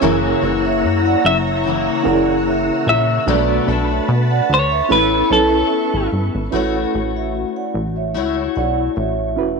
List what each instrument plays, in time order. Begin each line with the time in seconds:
Already playing: string machine C#5 E6
0.01 analog synth bass F#1, steel-string acoustic guitar F#2 C#3 E3 A#3 E4, reed electric piano C#4 E4 G#4 A#4, vibraphone A#4 C#5, string machine A#5
0.05 string machine F#5
0.43 analog synth bass F#1, steel-string acoustic guitar E3 A#3 E4
0.66 vibraphone C#5 E5
0.83 analog synth bass F#2
1.06 vibraphone D5 F#5
1.25 analog synth bass F#1, clean electric guitar E5
1.47 vibraphone C#5 E5
1.64 steel-string acoustic guitar C#3 E3 A#3
1.68 steel-string acoustic guitar E4
2.04 analog synth bass F#1, reed electric piano C#4 E4 G#4 A#4, vibraphone D5 F#5
2.48 vibraphone C#5 E5
2.86 analog synth bass A#1, clean electric guitar E5
3.26 analog synth bass B1, steel-string acoustic guitar B2 F#3 A3 D4 A4, reed electric piano D4 F#4 A4 D5, string machine B4 A5, vibraphone B4 D5
3.68 analog synth bass B1, steel-string acoustic guitar A3 D4 A4
3.90 vibraphone C#5 E5
4.09 analog synth bass B2
4.30 vibraphone D5 F#5
4.50 analog synth bass D2
4.54 clean electric guitar C#5
4.71 vibraphone C#5 E5
4.89 analog synth bass A1, steel-string acoustic guitar B3 E4, reed electric piano C#4 E4 A4 B4, clean electric guitar B4, string machine E5 C#6
4.93 steel-string acoustic guitar A4 C#5
5.30 analog synth bass B1, reed electric piano C#4 E4 A4 B4, vibraphone A4 C#5, clean electric guitar A4
5.94 analog synth bass G#1
6.13 analog synth bass G1
6.35 analog synth bass G#1
6.51 analog synth bass A1, steel-string acoustic guitar A3 E4 F#4, reed electric piano C#4 E4 F#4 B4, vibraphone A4 C#5
6.56 steel-string acoustic guitar C#5
6.95 analog synth bass A1
7.17 vibraphone C#5 E5
7.56 vibraphone D5 F#5
7.74 analog synth bass A1
7.96 vibraphone C#5 E5
8.14 analog synth bass C#2, steel-string acoustic guitar A3 E4 F#4 C#5
8.55 analog synth bass B1, vibraphone D5 F#5
8.96 analog synth bass A1, vibraphone C#5 E5
9.36 analog synth bass E1, reed electric piano C#4 E4 F#4 B4